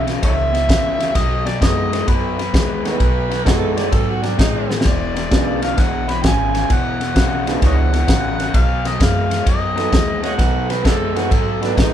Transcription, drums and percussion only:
0.07 snare soft
0.07 ride medium
0.23 kick medium
0.23 ride medium
0.55 snare soft
0.55 ride medium
0.69 kick medium
0.69 snare loud
0.69 ride medium
1.00 snare soft
1.00 ride medium
1.15 kick medium
1.15 snare soft
1.15 ride medium
1.46 snare soft
1.46 ride medium
1.62 kick medium
1.62 snare medium
1.62 ride medium
1.93 snare soft
1.93 ride medium
2.08 kick medium
2.08 ride medium
2.39 snare soft
2.39 ride medium
2.54 kick medium
2.54 snare loud
2.54 ride medium
2.85 snare soft
2.85 ride medium
3.00 kick medium
3.00 ride medium
3.31 snare soft
3.31 ride medium
3.46 kick medium
3.46 snare medium
3.46 ride medium
3.77 snare soft
3.77 ride medium
3.92 kick medium
3.92 ride medium
4.23 snare soft
4.23 ride soft
4.39 kick medium
4.39 snare loud
4.39 ride medium
4.71 snare medium
4.81 snare medium
4.85 kick medium
4.85 snare soft
4.85 ride medium
5.16 snare soft
5.16 ride medium
5.31 kick medium
5.31 snare medium
5.31 ride medium
5.62 snare soft
5.62 ride medium
5.78 kick medium
5.78 snare soft
5.78 ride medium
6.09 snare soft
6.09 ride medium
6.24 kick medium
6.24 snare loud
6.24 ride medium
6.55 snare soft
6.55 ride medium
6.70 kick medium
6.70 ride medium
7.01 snare soft
7.01 ride medium
7.16 kick medium
7.16 snare loud
7.16 ride medium
7.47 snare soft
7.47 ride medium
7.62 kick medium
7.62 snare soft
7.62 ride medium
7.94 snare soft
7.94 ride medium
8.08 kick medium
8.08 snare medium
8.08 ride medium
8.40 snare soft
8.40 ride medium
8.54 kick medium
8.54 ride medium
8.85 snare soft
8.85 ride medium
9.00 kick medium
9.00 snare medium
9.00 ride medium
9.31 snare soft
9.31 ride medium
9.47 kick medium
9.47 ride medium
9.78 snare soft
9.78 ride medium
9.93 kick medium
9.93 snare loud
9.93 ride medium
10.24 snare soft
10.24 ride medium
10.39 kick medium
10.39 snare soft
10.39 ride medium
10.70 snare soft
10.70 ride medium
10.85 kick medium
10.85 snare medium
10.85 ride medium
11.16 snare soft
11.16 ride medium
11.31 kick medium
11.31 ride medium
11.63 snare soft
11.63 ride medium
11.77 kick medium
11.77 snare loud
11.77 ride medium

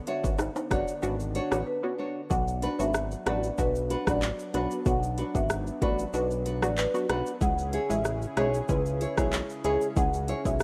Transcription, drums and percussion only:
0.07 closed hi-hat medium
0.07 shaker soft
0.24 kick loud
0.24 shaker medium
0.38 cross-stick medium
0.38 high timbale medium
0.38 shaker medium
0.56 high timbale medium
0.56 shaker medium
0.56 shaker soft
0.71 kick loud
0.71 cross-stick loud
0.71 closed hi-hat medium
0.71 shaker soft
0.71 shaker medium
0.88 shaker medium
1.02 shaker medium
1.20 shaker medium
1.35 closed hi-hat medium
1.35 shaker soft
1.35 shaker medium
1.52 cross-stick loud
1.52 shaker medium
2.30 kick loud
2.30 shaker medium
2.48 shaker medium
2.62 closed hi-hat medium
2.62 shaker soft
2.80 shaker medium
2.94 cross-stick loud
2.94 shaker medium
3.11 shaker soft
3.11 shaker medium
3.26 cross-stick loud
3.26 closed hi-hat medium
3.26 shaker soft
3.43 shaker medium
3.58 kick medium
3.58 shaker medium
3.75 shaker medium
3.90 closed hi-hat medium
3.90 shaker soft
3.90 shaker medium
4.07 kick medium
4.07 cross-stick loud
4.07 shaker medium
4.22 clap loud
4.22 shaker medium
4.39 shaker medium
4.54 closed hi-hat medium
4.54 shaker medium
4.71 shaker medium
4.86 kick loud
4.86 shaker medium
5.03 shaker medium
5.18 closed hi-hat medium
5.18 shaker soft
5.35 kick medium
5.35 shaker medium
5.50 cross-stick loud
5.50 shaker medium
5.67 shaker soft
5.67 shaker medium
5.82 kick medium
5.82 closed hi-hat medium
5.82 shaker soft
5.99 shaker medium
6.13 shaker medium
6.31 shaker medium
6.46 closed hi-hat medium
6.46 shaker soft
6.46 shaker medium
6.62 cross-stick loud
6.62 shaker medium
6.77 clap loud
6.77 shaker medium
6.94 shaker soft
6.94 shaker medium
7.09 cross-stick loud
7.09 closed hi-hat medium
7.09 shaker medium
7.26 shaker medium
7.41 kick loud
7.41 shaker medium
7.58 shaker medium
7.73 closed hi-hat medium
7.73 shaker soft
7.90 shaker medium
8.05 cross-stick medium
8.05 shaker medium
8.22 shaker soft
8.22 shaker medium
8.37 cross-stick loud
8.37 closed hi-hat medium
8.37 shaker soft
8.54 shaker medium
8.69 kick medium
8.69 shaker medium
8.86 shaker soft
8.86 shaker medium
9.01 closed hi-hat medium
9.01 shaker soft
9.01 shaker medium
9.18 kick medium
9.18 cross-stick loud
9.18 shaker medium
9.33 clap loud
9.33 shaker medium
9.49 shaker medium
9.64 closed hi-hat medium
9.64 shaker soft
9.81 shaker medium
9.96 kick loud
9.96 shaker medium
10.14 shaker medium
10.28 closed hi-hat medium
10.28 shaker soft
10.45 kick loud
10.45 shaker medium
10.60 cross-stick medium
10.60 shaker medium

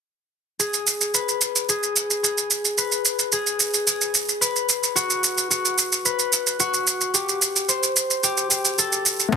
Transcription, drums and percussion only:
0.60 shaker soft
0.74 shaker soft
0.87 shaker medium
1.01 shaker soft
1.14 shaker soft
1.28 shaker soft
1.41 shaker medium
1.56 shaker soft
1.69 shaker soft
1.83 shaker soft
1.96 shaker medium
2.11 shaker soft
2.24 shaker soft
2.38 shaker soft
2.51 shaker medium
2.65 shaker soft
2.78 shaker soft
2.92 shaker soft
3.05 shaker medium
3.19 shaker soft
3.32 shaker soft
3.47 shaker soft
3.60 shaker medium
3.74 shaker soft
3.87 shaker soft
4.01 shaker soft
4.15 shaker medium
4.29 shaker soft
4.42 shaker soft
4.56 shaker soft
4.69 shaker medium
4.83 shaker soft
4.96 shaker soft
5.10 shaker soft
5.24 shaker medium
5.38 shaker soft
5.51 shaker soft
5.65 shaker soft
5.78 shaker medium
5.92 shaker soft
6.05 shaker soft
6.19 shaker soft
6.33 shaker medium
6.47 shaker soft
6.60 shaker soft
6.74 shaker soft
6.87 shaker medium
7.01 shaker soft
7.14 shaker soft
7.29 shaker soft
7.42 shaker medium
7.56 shaker soft
7.69 shaker soft
7.83 shaker soft
7.96 shaker medium
8.11 shaker soft
8.24 shaker soft
8.37 shaker soft
8.51 shaker medium
8.65 shaker soft
8.79 shaker soft
8.92 shaker soft
9.06 shaker medium
9.20 shaker soft
9.32 kick loud
9.32 shaker soft

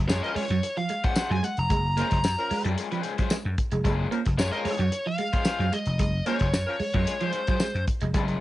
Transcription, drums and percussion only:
0.09 snare loud
0.09 tambourine medium
0.24 closed hi-hat soft
0.36 open hi-hat medium
0.51 closed hi-hat soft
0.63 closed hi-hat loud
0.77 closed hi-hat soft
0.89 closed hi-hat medium
1.04 kick loud
1.04 closed hi-hat medium
1.16 snare loud
1.16 tambourine loud
1.32 closed hi-hat soft
1.44 closed hi-hat medium
1.57 closed hi-hat soft
1.70 kick loud
1.70 closed hi-hat medium
1.97 closed hi-hat medium
2.11 kick medium
2.11 snare soft
2.11 closed hi-hat medium
2.24 snare loud
2.24 tambourine medium
2.38 closed hi-hat soft
2.51 open hi-hat medium
2.65 closed hi-hat soft
2.78 closed hi-hat loud
2.92 closed hi-hat soft
3.03 closed hi-hat medium
3.18 kick loud
3.18 closed hi-hat soft
3.30 snare loud
3.30 tambourine loud
3.58 kick loud
3.58 closed hi-hat medium
3.72 closed hi-hat soft
3.85 kick loud
3.85 closed hi-hat loud
4.12 closed hi-hat medium
4.25 kick medium
4.25 snare soft
4.25 closed hi-hat medium
4.39 snare loud
4.39 tambourine loud
4.53 closed hi-hat soft
4.65 open hi-hat medium
4.80 closed hi-hat soft
4.92 closed hi-hat loud
5.18 closed hi-hat medium
5.33 kick loud
5.33 closed hi-hat medium
5.45 snare loud
5.45 tambourine loud
5.61 closed hi-hat soft
5.73 closed hi-hat medium
5.86 closed hi-hat medium
5.99 kick loud
5.99 closed hi-hat loud
6.26 closed hi-hat medium
6.39 kick medium
6.39 snare soft
6.39 closed hi-hat soft
6.54 snare loud
6.54 tambourine loud
6.80 open hi-hat medium
6.94 kick loud
6.94 closed hi-hat soft
7.07 closed hi-hat loud
7.21 closed hi-hat soft
7.33 closed hi-hat medium
7.47 kick loud
7.47 closed hi-hat medium
7.60 snare loud
7.60 tambourine loud
7.76 closed hi-hat soft
7.87 kick loud
7.87 closed hi-hat medium
8.00 closed hi-hat soft
8.14 kick loud
8.14 closed hi-hat loud
8.28 closed hi-hat soft

